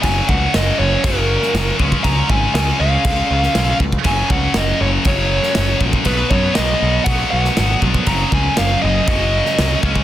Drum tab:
CC |x---x---x---x---|x---x---x---x---|x---x---x---x---|x---x---x---x---|
SD |----o------oo---|----o------oo---|----o------oo---|----o------oo---|
BD |o-o-----o-----oo|o-o-----o-----oo|o-o-----o-----oo|o-o-----o-----oo|

CC |x---x---x---x---|
SD |----o------oo---|
BD |o-o-----o-----oo|